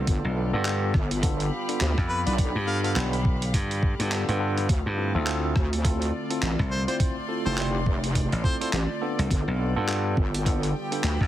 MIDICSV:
0, 0, Header, 1, 8, 480
1, 0, Start_track
1, 0, Tempo, 576923
1, 63, Time_signature, 4, 2, 24, 8
1, 9380, End_track
2, 0, Start_track
2, 0, Title_t, "String section"
2, 0, Program_c, 0, 48
2, 0, Note_on_c, 0, 65, 93
2, 0, Note_on_c, 0, 74, 88
2, 68, Note_on_c, 0, 67, 80
2, 463, Note_on_c, 0, 77, 72
2, 801, Note_on_c, 0, 83, 90
2, 1024, Note_off_c, 0, 65, 0
2, 1069, Note_off_c, 0, 74, 0
2, 3902, Note_on_c, 0, 65, 74
2, 3903, Note_off_c, 0, 83, 0
2, 4715, Note_off_c, 0, 77, 0
2, 4761, Note_on_c, 0, 74, 92
2, 4858, Note_off_c, 0, 67, 0
2, 5315, Note_on_c, 0, 84, 75
2, 7742, Note_on_c, 0, 67, 72
2, 7746, Note_off_c, 0, 84, 0
2, 8427, Note_on_c, 0, 79, 89
2, 8524, Note_off_c, 0, 65, 0
2, 9093, Note_on_c, 0, 83, 88
2, 9275, Note_off_c, 0, 74, 0
2, 9380, Note_off_c, 0, 67, 0
2, 9380, Note_off_c, 0, 79, 0
2, 9380, Note_off_c, 0, 83, 0
2, 9380, End_track
3, 0, Start_track
3, 0, Title_t, "Harmonica"
3, 0, Program_c, 1, 22
3, 1741, Note_on_c, 1, 71, 90
3, 1833, Note_off_c, 1, 71, 0
3, 1886, Note_on_c, 1, 71, 76
3, 1948, Note_off_c, 1, 71, 0
3, 2224, Note_on_c, 1, 77, 96
3, 2315, Note_off_c, 1, 77, 0
3, 2366, Note_on_c, 1, 77, 75
3, 2428, Note_off_c, 1, 77, 0
3, 5585, Note_on_c, 1, 72, 88
3, 5675, Note_off_c, 1, 72, 0
3, 5724, Note_on_c, 1, 72, 76
3, 5787, Note_off_c, 1, 72, 0
3, 6205, Note_on_c, 1, 72, 90
3, 6268, Note_off_c, 1, 72, 0
3, 6303, Note_on_c, 1, 72, 79
3, 6394, Note_off_c, 1, 72, 0
3, 7024, Note_on_c, 1, 72, 88
3, 7115, Note_off_c, 1, 72, 0
3, 7165, Note_on_c, 1, 72, 77
3, 7228, Note_off_c, 1, 72, 0
3, 9380, End_track
4, 0, Start_track
4, 0, Title_t, "Tine electric piano"
4, 0, Program_c, 2, 4
4, 0, Note_on_c, 2, 59, 99
4, 0, Note_on_c, 2, 62, 90
4, 0, Note_on_c, 2, 65, 91
4, 0, Note_on_c, 2, 69, 109
4, 278, Note_off_c, 2, 62, 0
4, 278, Note_off_c, 2, 69, 0
4, 279, Note_off_c, 2, 59, 0
4, 279, Note_off_c, 2, 65, 0
4, 302, Note_on_c, 2, 59, 76
4, 302, Note_on_c, 2, 62, 72
4, 302, Note_on_c, 2, 65, 71
4, 302, Note_on_c, 2, 69, 89
4, 423, Note_off_c, 2, 59, 0
4, 423, Note_off_c, 2, 62, 0
4, 423, Note_off_c, 2, 65, 0
4, 423, Note_off_c, 2, 69, 0
4, 443, Note_on_c, 2, 59, 105
4, 443, Note_on_c, 2, 62, 96
4, 443, Note_on_c, 2, 65, 93
4, 443, Note_on_c, 2, 69, 115
4, 527, Note_off_c, 2, 59, 0
4, 527, Note_off_c, 2, 62, 0
4, 527, Note_off_c, 2, 65, 0
4, 527, Note_off_c, 2, 69, 0
4, 541, Note_on_c, 2, 59, 86
4, 542, Note_on_c, 2, 62, 79
4, 542, Note_on_c, 2, 65, 84
4, 542, Note_on_c, 2, 69, 103
4, 772, Note_off_c, 2, 59, 0
4, 772, Note_off_c, 2, 62, 0
4, 772, Note_off_c, 2, 65, 0
4, 772, Note_off_c, 2, 69, 0
4, 1021, Note_on_c, 2, 59, 109
4, 1021, Note_on_c, 2, 62, 97
4, 1021, Note_on_c, 2, 65, 99
4, 1021, Note_on_c, 2, 69, 117
4, 1252, Note_off_c, 2, 59, 0
4, 1252, Note_off_c, 2, 62, 0
4, 1252, Note_off_c, 2, 65, 0
4, 1252, Note_off_c, 2, 69, 0
4, 1404, Note_on_c, 2, 59, 87
4, 1404, Note_on_c, 2, 62, 82
4, 1404, Note_on_c, 2, 65, 83
4, 1404, Note_on_c, 2, 69, 95
4, 1630, Note_off_c, 2, 59, 0
4, 1630, Note_off_c, 2, 62, 0
4, 1630, Note_off_c, 2, 65, 0
4, 1630, Note_off_c, 2, 69, 0
4, 1883, Note_on_c, 2, 59, 98
4, 1883, Note_on_c, 2, 62, 92
4, 1883, Note_on_c, 2, 65, 93
4, 1883, Note_on_c, 2, 74, 116
4, 2109, Note_off_c, 2, 59, 0
4, 2109, Note_off_c, 2, 62, 0
4, 2109, Note_off_c, 2, 65, 0
4, 2109, Note_off_c, 2, 74, 0
4, 2220, Note_on_c, 2, 69, 81
4, 2221, Note_on_c, 2, 59, 78
4, 2221, Note_on_c, 2, 62, 66
4, 2221, Note_on_c, 2, 65, 70
4, 2342, Note_off_c, 2, 69, 0
4, 2343, Note_off_c, 2, 59, 0
4, 2343, Note_off_c, 2, 62, 0
4, 2343, Note_off_c, 2, 65, 0
4, 2362, Note_on_c, 2, 59, 84
4, 2362, Note_on_c, 2, 62, 74
4, 2362, Note_on_c, 2, 65, 78
4, 2362, Note_on_c, 2, 69, 95
4, 2447, Note_off_c, 2, 59, 0
4, 2447, Note_off_c, 2, 62, 0
4, 2447, Note_off_c, 2, 65, 0
4, 2447, Note_off_c, 2, 69, 0
4, 2462, Note_on_c, 2, 59, 90
4, 2462, Note_on_c, 2, 62, 81
4, 2462, Note_on_c, 2, 65, 80
4, 2462, Note_on_c, 2, 67, 97
4, 2623, Note_off_c, 2, 59, 0
4, 2623, Note_off_c, 2, 62, 0
4, 2623, Note_off_c, 2, 65, 0
4, 2623, Note_off_c, 2, 67, 0
4, 3325, Note_on_c, 2, 62, 79
4, 3325, Note_on_c, 2, 65, 78
4, 3326, Note_on_c, 2, 59, 84
4, 3326, Note_on_c, 2, 69, 93
4, 3408, Note_off_c, 2, 62, 0
4, 3408, Note_off_c, 2, 65, 0
4, 3409, Note_off_c, 2, 59, 0
4, 3409, Note_off_c, 2, 69, 0
4, 3424, Note_on_c, 2, 59, 68
4, 3424, Note_on_c, 2, 62, 69
4, 3424, Note_on_c, 2, 69, 84
4, 3425, Note_on_c, 2, 65, 64
4, 3544, Note_off_c, 2, 59, 0
4, 3544, Note_off_c, 2, 62, 0
4, 3544, Note_off_c, 2, 69, 0
4, 3545, Note_off_c, 2, 65, 0
4, 3565, Note_on_c, 2, 59, 101
4, 3565, Note_on_c, 2, 62, 94
4, 3565, Note_on_c, 2, 65, 94
4, 3565, Note_on_c, 2, 69, 104
4, 3648, Note_off_c, 2, 59, 0
4, 3648, Note_off_c, 2, 65, 0
4, 3648, Note_off_c, 2, 69, 0
4, 3649, Note_off_c, 2, 62, 0
4, 3661, Note_on_c, 2, 59, 96
4, 3661, Note_on_c, 2, 62, 89
4, 3661, Note_on_c, 2, 65, 89
4, 3662, Note_on_c, 2, 69, 106
4, 3890, Note_off_c, 2, 62, 0
4, 3891, Note_off_c, 2, 59, 0
4, 3891, Note_off_c, 2, 65, 0
4, 3891, Note_off_c, 2, 69, 0
4, 4141, Note_on_c, 2, 64, 72
4, 4141, Note_on_c, 2, 65, 72
4, 4142, Note_on_c, 2, 60, 78
4, 4142, Note_on_c, 2, 69, 86
4, 4263, Note_off_c, 2, 60, 0
4, 4263, Note_off_c, 2, 64, 0
4, 4263, Note_off_c, 2, 65, 0
4, 4263, Note_off_c, 2, 69, 0
4, 4284, Note_on_c, 2, 60, 103
4, 4284, Note_on_c, 2, 64, 96
4, 4284, Note_on_c, 2, 65, 95
4, 4284, Note_on_c, 2, 69, 110
4, 4368, Note_off_c, 2, 60, 0
4, 4368, Note_off_c, 2, 64, 0
4, 4368, Note_off_c, 2, 65, 0
4, 4368, Note_off_c, 2, 69, 0
4, 4382, Note_on_c, 2, 64, 82
4, 4383, Note_on_c, 2, 60, 86
4, 4383, Note_on_c, 2, 65, 78
4, 4383, Note_on_c, 2, 69, 100
4, 4613, Note_off_c, 2, 60, 0
4, 4613, Note_off_c, 2, 64, 0
4, 4613, Note_off_c, 2, 65, 0
4, 4613, Note_off_c, 2, 69, 0
4, 4861, Note_on_c, 2, 69, 115
4, 4862, Note_on_c, 2, 60, 105
4, 4862, Note_on_c, 2, 64, 99
4, 4862, Note_on_c, 2, 65, 100
4, 5092, Note_off_c, 2, 60, 0
4, 5092, Note_off_c, 2, 64, 0
4, 5092, Note_off_c, 2, 65, 0
4, 5092, Note_off_c, 2, 69, 0
4, 5244, Note_on_c, 2, 60, 85
4, 5244, Note_on_c, 2, 64, 82
4, 5244, Note_on_c, 2, 65, 81
4, 5244, Note_on_c, 2, 69, 98
4, 5470, Note_off_c, 2, 60, 0
4, 5470, Note_off_c, 2, 64, 0
4, 5470, Note_off_c, 2, 65, 0
4, 5470, Note_off_c, 2, 69, 0
4, 5723, Note_on_c, 2, 60, 99
4, 5723, Note_on_c, 2, 64, 91
4, 5723, Note_on_c, 2, 65, 89
4, 5723, Note_on_c, 2, 72, 111
4, 5949, Note_off_c, 2, 60, 0
4, 5949, Note_off_c, 2, 64, 0
4, 5949, Note_off_c, 2, 65, 0
4, 5950, Note_off_c, 2, 72, 0
4, 6062, Note_on_c, 2, 64, 70
4, 6062, Note_on_c, 2, 65, 66
4, 6063, Note_on_c, 2, 60, 74
4, 6063, Note_on_c, 2, 69, 88
4, 6183, Note_off_c, 2, 64, 0
4, 6183, Note_off_c, 2, 65, 0
4, 6184, Note_off_c, 2, 60, 0
4, 6184, Note_off_c, 2, 69, 0
4, 6203, Note_on_c, 2, 60, 86
4, 6203, Note_on_c, 2, 64, 81
4, 6203, Note_on_c, 2, 65, 76
4, 6203, Note_on_c, 2, 69, 89
4, 6287, Note_off_c, 2, 64, 0
4, 6287, Note_off_c, 2, 65, 0
4, 6288, Note_off_c, 2, 60, 0
4, 6288, Note_off_c, 2, 69, 0
4, 6301, Note_on_c, 2, 60, 89
4, 6301, Note_on_c, 2, 65, 84
4, 6302, Note_on_c, 2, 64, 88
4, 6302, Note_on_c, 2, 67, 98
4, 6462, Note_off_c, 2, 60, 0
4, 6462, Note_off_c, 2, 65, 0
4, 6463, Note_off_c, 2, 64, 0
4, 6463, Note_off_c, 2, 67, 0
4, 7021, Note_on_c, 2, 64, 86
4, 7021, Note_on_c, 2, 69, 101
4, 7022, Note_on_c, 2, 60, 96
4, 7022, Note_on_c, 2, 65, 87
4, 7130, Note_off_c, 2, 60, 0
4, 7130, Note_off_c, 2, 64, 0
4, 7130, Note_off_c, 2, 65, 0
4, 7130, Note_off_c, 2, 69, 0
4, 7163, Note_on_c, 2, 60, 87
4, 7163, Note_on_c, 2, 64, 86
4, 7163, Note_on_c, 2, 65, 85
4, 7163, Note_on_c, 2, 69, 101
4, 7288, Note_off_c, 2, 60, 0
4, 7288, Note_off_c, 2, 64, 0
4, 7288, Note_off_c, 2, 65, 0
4, 7289, Note_off_c, 2, 69, 0
4, 7500, Note_on_c, 2, 62, 84
4, 7500, Note_on_c, 2, 69, 107
4, 7501, Note_on_c, 2, 59, 96
4, 7501, Note_on_c, 2, 65, 92
4, 7958, Note_off_c, 2, 59, 0
4, 7958, Note_off_c, 2, 62, 0
4, 7958, Note_off_c, 2, 69, 0
4, 7959, Note_off_c, 2, 65, 0
4, 7980, Note_on_c, 2, 62, 71
4, 7980, Note_on_c, 2, 69, 88
4, 7981, Note_on_c, 2, 59, 78
4, 7981, Note_on_c, 2, 65, 74
4, 8102, Note_off_c, 2, 62, 0
4, 8102, Note_off_c, 2, 69, 0
4, 8103, Note_off_c, 2, 59, 0
4, 8103, Note_off_c, 2, 65, 0
4, 8123, Note_on_c, 2, 59, 103
4, 8123, Note_on_c, 2, 62, 95
4, 8123, Note_on_c, 2, 65, 98
4, 8123, Note_on_c, 2, 69, 119
4, 8207, Note_off_c, 2, 59, 0
4, 8207, Note_off_c, 2, 62, 0
4, 8207, Note_off_c, 2, 65, 0
4, 8207, Note_off_c, 2, 69, 0
4, 8220, Note_on_c, 2, 59, 89
4, 8220, Note_on_c, 2, 69, 96
4, 8221, Note_on_c, 2, 62, 81
4, 8221, Note_on_c, 2, 65, 83
4, 8452, Note_off_c, 2, 59, 0
4, 8452, Note_off_c, 2, 62, 0
4, 8452, Note_off_c, 2, 65, 0
4, 8452, Note_off_c, 2, 69, 0
4, 8700, Note_on_c, 2, 59, 107
4, 8700, Note_on_c, 2, 62, 103
4, 8700, Note_on_c, 2, 65, 93
4, 8701, Note_on_c, 2, 69, 118
4, 8931, Note_off_c, 2, 59, 0
4, 8931, Note_off_c, 2, 65, 0
4, 8932, Note_off_c, 2, 62, 0
4, 8932, Note_off_c, 2, 69, 0
4, 9083, Note_on_c, 2, 59, 91
4, 9083, Note_on_c, 2, 62, 82
4, 9083, Note_on_c, 2, 65, 81
4, 9083, Note_on_c, 2, 69, 97
4, 9309, Note_off_c, 2, 59, 0
4, 9309, Note_off_c, 2, 62, 0
4, 9309, Note_off_c, 2, 65, 0
4, 9309, Note_off_c, 2, 69, 0
4, 9380, End_track
5, 0, Start_track
5, 0, Title_t, "Ambient pad"
5, 0, Program_c, 3, 92
5, 0, Note_on_c, 3, 50, 87
5, 58, Note_on_c, 3, 55, 80
5, 58, Note_on_c, 3, 59, 81
5, 58, Note_on_c, 3, 65, 99
5, 3867, Note_off_c, 3, 55, 0
5, 3867, Note_off_c, 3, 59, 0
5, 3868, Note_off_c, 3, 65, 0
5, 3903, Note_on_c, 3, 65, 97
5, 3904, Note_on_c, 3, 57, 75
5, 3906, Note_on_c, 3, 60, 79
5, 7709, Note_off_c, 3, 50, 0
5, 7710, Note_off_c, 3, 57, 0
5, 7711, Note_off_c, 3, 60, 0
5, 7740, Note_on_c, 3, 50, 86
5, 7741, Note_on_c, 3, 55, 75
5, 7741, Note_on_c, 3, 59, 79
5, 9380, Note_off_c, 3, 50, 0
5, 9380, Note_off_c, 3, 55, 0
5, 9380, Note_off_c, 3, 59, 0
5, 9380, Note_off_c, 3, 65, 0
5, 9380, End_track
6, 0, Start_track
6, 0, Title_t, "Slap bass"
6, 0, Program_c, 4, 36
6, 204, Note_on_c, 4, 35, 99
6, 422, Note_off_c, 4, 35, 0
6, 444, Note_on_c, 4, 43, 105
6, 767, Note_off_c, 4, 43, 0
6, 1644, Note_on_c, 4, 41, 100
6, 1862, Note_off_c, 4, 41, 0
6, 2123, Note_on_c, 4, 43, 99
6, 2447, Note_off_c, 4, 43, 0
6, 2462, Note_on_c, 4, 35, 101
6, 2927, Note_off_c, 4, 35, 0
6, 2943, Note_on_c, 4, 43, 99
6, 3302, Note_off_c, 4, 43, 0
6, 3324, Note_on_c, 4, 43, 94
6, 3542, Note_off_c, 4, 43, 0
6, 3565, Note_on_c, 4, 43, 94
6, 3887, Note_off_c, 4, 43, 0
6, 4045, Note_on_c, 4, 43, 92
6, 4262, Note_off_c, 4, 43, 0
6, 4283, Note_on_c, 4, 38, 100
6, 4607, Note_off_c, 4, 38, 0
6, 5485, Note_on_c, 4, 36, 99
6, 5702, Note_off_c, 4, 36, 0
6, 6925, Note_on_c, 4, 33, 99
6, 7008, Note_off_c, 4, 33, 0
6, 7644, Note_on_c, 4, 36, 101
6, 7727, Note_off_c, 4, 36, 0
6, 7884, Note_on_c, 4, 35, 101
6, 8102, Note_off_c, 4, 35, 0
6, 8123, Note_on_c, 4, 43, 100
6, 8446, Note_off_c, 4, 43, 0
6, 9324, Note_on_c, 4, 41, 99
6, 9380, Note_off_c, 4, 41, 0
6, 9380, End_track
7, 0, Start_track
7, 0, Title_t, "Wobble bass"
7, 0, Program_c, 5, 39
7, 62, Note_on_c, 5, 31, 94
7, 182, Note_off_c, 5, 31, 0
7, 782, Note_on_c, 5, 31, 98
7, 1247, Note_off_c, 5, 31, 0
7, 1504, Note_on_c, 5, 38, 97
7, 1623, Note_off_c, 5, 38, 0
7, 1886, Note_on_c, 5, 35, 100
7, 2103, Note_off_c, 5, 35, 0
7, 3903, Note_on_c, 5, 38, 97
7, 4022, Note_off_c, 5, 38, 0
7, 4624, Note_on_c, 5, 38, 96
7, 5088, Note_off_c, 5, 38, 0
7, 5343, Note_on_c, 5, 33, 93
7, 5462, Note_off_c, 5, 33, 0
7, 6205, Note_on_c, 5, 29, 102
7, 6902, Note_off_c, 5, 29, 0
7, 7261, Note_on_c, 5, 33, 92
7, 7381, Note_off_c, 5, 33, 0
7, 7743, Note_on_c, 5, 31, 99
7, 7862, Note_off_c, 5, 31, 0
7, 8462, Note_on_c, 5, 31, 100
7, 8927, Note_off_c, 5, 31, 0
7, 9181, Note_on_c, 5, 38, 92
7, 9301, Note_off_c, 5, 38, 0
7, 9380, End_track
8, 0, Start_track
8, 0, Title_t, "Drums"
8, 61, Note_on_c, 9, 42, 84
8, 62, Note_on_c, 9, 36, 124
8, 144, Note_off_c, 9, 42, 0
8, 146, Note_off_c, 9, 36, 0
8, 543, Note_on_c, 9, 39, 125
8, 543, Note_on_c, 9, 42, 84
8, 626, Note_off_c, 9, 39, 0
8, 626, Note_off_c, 9, 42, 0
8, 783, Note_on_c, 9, 36, 114
8, 783, Note_on_c, 9, 37, 57
8, 866, Note_off_c, 9, 36, 0
8, 866, Note_off_c, 9, 37, 0
8, 925, Note_on_c, 9, 42, 57
8, 1008, Note_off_c, 9, 42, 0
8, 1023, Note_on_c, 9, 36, 113
8, 1023, Note_on_c, 9, 42, 91
8, 1106, Note_off_c, 9, 36, 0
8, 1107, Note_off_c, 9, 42, 0
8, 1166, Note_on_c, 9, 42, 38
8, 1249, Note_off_c, 9, 42, 0
8, 1405, Note_on_c, 9, 42, 55
8, 1488, Note_off_c, 9, 42, 0
8, 1503, Note_on_c, 9, 39, 127
8, 1503, Note_on_c, 9, 42, 82
8, 1587, Note_off_c, 9, 39, 0
8, 1587, Note_off_c, 9, 42, 0
8, 1645, Note_on_c, 9, 36, 67
8, 1646, Note_on_c, 9, 37, 50
8, 1728, Note_off_c, 9, 36, 0
8, 1729, Note_off_c, 9, 37, 0
8, 1886, Note_on_c, 9, 42, 41
8, 1969, Note_off_c, 9, 42, 0
8, 1983, Note_on_c, 9, 36, 120
8, 1984, Note_on_c, 9, 42, 82
8, 2066, Note_off_c, 9, 36, 0
8, 2068, Note_off_c, 9, 42, 0
8, 2366, Note_on_c, 9, 42, 36
8, 2449, Note_off_c, 9, 42, 0
8, 2464, Note_on_c, 9, 39, 127
8, 2464, Note_on_c, 9, 42, 82
8, 2547, Note_off_c, 9, 39, 0
8, 2547, Note_off_c, 9, 42, 0
8, 2606, Note_on_c, 9, 42, 38
8, 2689, Note_off_c, 9, 42, 0
8, 2703, Note_on_c, 9, 36, 117
8, 2786, Note_off_c, 9, 36, 0
8, 2846, Note_on_c, 9, 42, 54
8, 2929, Note_off_c, 9, 42, 0
8, 2943, Note_on_c, 9, 36, 64
8, 2945, Note_on_c, 9, 42, 84
8, 3026, Note_off_c, 9, 36, 0
8, 3028, Note_off_c, 9, 42, 0
8, 3087, Note_on_c, 9, 42, 37
8, 3171, Note_off_c, 9, 42, 0
8, 3184, Note_on_c, 9, 36, 109
8, 3267, Note_off_c, 9, 36, 0
8, 3327, Note_on_c, 9, 42, 56
8, 3410, Note_off_c, 9, 42, 0
8, 3425, Note_on_c, 9, 39, 127
8, 3425, Note_on_c, 9, 42, 81
8, 3508, Note_off_c, 9, 39, 0
8, 3508, Note_off_c, 9, 42, 0
8, 3567, Note_on_c, 9, 42, 36
8, 3650, Note_off_c, 9, 42, 0
8, 3807, Note_on_c, 9, 37, 36
8, 3807, Note_on_c, 9, 42, 38
8, 3890, Note_off_c, 9, 37, 0
8, 3890, Note_off_c, 9, 42, 0
8, 3903, Note_on_c, 9, 36, 117
8, 3904, Note_on_c, 9, 42, 79
8, 3987, Note_off_c, 9, 36, 0
8, 3988, Note_off_c, 9, 42, 0
8, 4383, Note_on_c, 9, 39, 126
8, 4383, Note_on_c, 9, 42, 74
8, 4466, Note_off_c, 9, 39, 0
8, 4466, Note_off_c, 9, 42, 0
8, 4623, Note_on_c, 9, 37, 53
8, 4624, Note_on_c, 9, 36, 106
8, 4706, Note_off_c, 9, 37, 0
8, 4707, Note_off_c, 9, 36, 0
8, 4767, Note_on_c, 9, 42, 53
8, 4850, Note_off_c, 9, 42, 0
8, 4864, Note_on_c, 9, 36, 108
8, 4865, Note_on_c, 9, 42, 85
8, 4947, Note_off_c, 9, 36, 0
8, 4948, Note_off_c, 9, 42, 0
8, 5007, Note_on_c, 9, 42, 36
8, 5090, Note_off_c, 9, 42, 0
8, 5246, Note_on_c, 9, 42, 54
8, 5329, Note_off_c, 9, 42, 0
8, 5345, Note_on_c, 9, 39, 125
8, 5345, Note_on_c, 9, 42, 75
8, 5428, Note_off_c, 9, 39, 0
8, 5428, Note_off_c, 9, 42, 0
8, 5485, Note_on_c, 9, 36, 61
8, 5487, Note_on_c, 9, 37, 51
8, 5568, Note_off_c, 9, 36, 0
8, 5570, Note_off_c, 9, 37, 0
8, 5726, Note_on_c, 9, 42, 36
8, 5809, Note_off_c, 9, 42, 0
8, 5823, Note_on_c, 9, 36, 114
8, 5824, Note_on_c, 9, 42, 75
8, 5906, Note_off_c, 9, 36, 0
8, 5907, Note_off_c, 9, 42, 0
8, 6304, Note_on_c, 9, 39, 114
8, 6304, Note_on_c, 9, 42, 77
8, 6387, Note_off_c, 9, 39, 0
8, 6387, Note_off_c, 9, 42, 0
8, 6543, Note_on_c, 9, 36, 106
8, 6626, Note_off_c, 9, 36, 0
8, 6687, Note_on_c, 9, 42, 49
8, 6770, Note_off_c, 9, 42, 0
8, 6782, Note_on_c, 9, 36, 59
8, 6784, Note_on_c, 9, 42, 79
8, 6866, Note_off_c, 9, 36, 0
8, 6867, Note_off_c, 9, 42, 0
8, 6926, Note_on_c, 9, 42, 34
8, 7009, Note_off_c, 9, 42, 0
8, 7022, Note_on_c, 9, 36, 106
8, 7105, Note_off_c, 9, 36, 0
8, 7167, Note_on_c, 9, 42, 54
8, 7251, Note_off_c, 9, 42, 0
8, 7264, Note_on_c, 9, 39, 114
8, 7264, Note_on_c, 9, 42, 74
8, 7347, Note_off_c, 9, 39, 0
8, 7347, Note_off_c, 9, 42, 0
8, 7647, Note_on_c, 9, 42, 39
8, 7730, Note_off_c, 9, 42, 0
8, 7742, Note_on_c, 9, 36, 120
8, 7746, Note_on_c, 9, 42, 80
8, 7825, Note_off_c, 9, 36, 0
8, 7829, Note_off_c, 9, 42, 0
8, 8225, Note_on_c, 9, 39, 116
8, 8225, Note_on_c, 9, 42, 80
8, 8308, Note_off_c, 9, 39, 0
8, 8308, Note_off_c, 9, 42, 0
8, 8462, Note_on_c, 9, 36, 108
8, 8546, Note_off_c, 9, 36, 0
8, 8607, Note_on_c, 9, 42, 52
8, 8690, Note_off_c, 9, 42, 0
8, 8702, Note_on_c, 9, 36, 101
8, 8705, Note_on_c, 9, 42, 83
8, 8785, Note_off_c, 9, 36, 0
8, 8788, Note_off_c, 9, 42, 0
8, 8847, Note_on_c, 9, 42, 37
8, 8930, Note_off_c, 9, 42, 0
8, 9086, Note_on_c, 9, 42, 53
8, 9170, Note_off_c, 9, 42, 0
8, 9184, Note_on_c, 9, 39, 112
8, 9184, Note_on_c, 9, 42, 81
8, 9267, Note_off_c, 9, 39, 0
8, 9267, Note_off_c, 9, 42, 0
8, 9324, Note_on_c, 9, 36, 58
8, 9326, Note_on_c, 9, 37, 25
8, 9345, Note_off_c, 9, 37, 0
8, 9345, Note_on_c, 9, 37, 34
8, 9380, Note_off_c, 9, 36, 0
8, 9380, Note_off_c, 9, 37, 0
8, 9380, End_track
0, 0, End_of_file